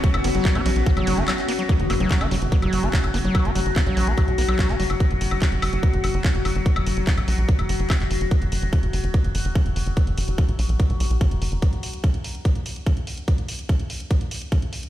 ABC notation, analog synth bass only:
X:1
M:4/4
L:1/16
Q:1/4=145
K:F#
V:1 name="Analog synth bass" clef=bass
z F,,, F,,, F,,, z A,,, A,,, A,,, z F,,, F,,, F,,, z4 | z F,,, F,,, F,,, z F,,, F,,, F,,, z F,,, F,,, F,,, z F,,, F,,, F,,, | z F,,, F,,, F,,, z A,,, A,,, A,,, z B,,, B,,, B,,, z F,,, F,,, F,,, | z F,,, F,,, F,,, z F,,, F,,, F,,, z F,,, F,,, F,,, z F,,, F,,, F,,, |
z F,,, F,,, F,,, z A,,, A,,, A,,, z F,,, F,,, F,,, z F,,, F,,, F,,, | z F,,, F,,, F,,, z F,,, F,,, F,,, z F,,, F,,, F,,, z F,,, F,,, F,,, | z F,,, F,,, F,,, z A,,, A,,, A,,, z B,,, B,,, B,,, z F,,, F,,, F,,, | z16 |
z16 |]